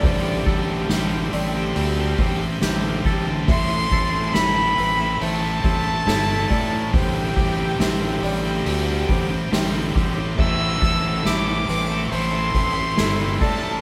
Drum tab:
CC |--------|--------|--------|x-------|
HH |oooooooo|oooooooo|oooooooo|-ooooooo|
SD |--o---o-|--o---o-|--o---o-|--oo--o-|
BD |oo---o-o|oo---o-o|oo---o-o|oo---o-o|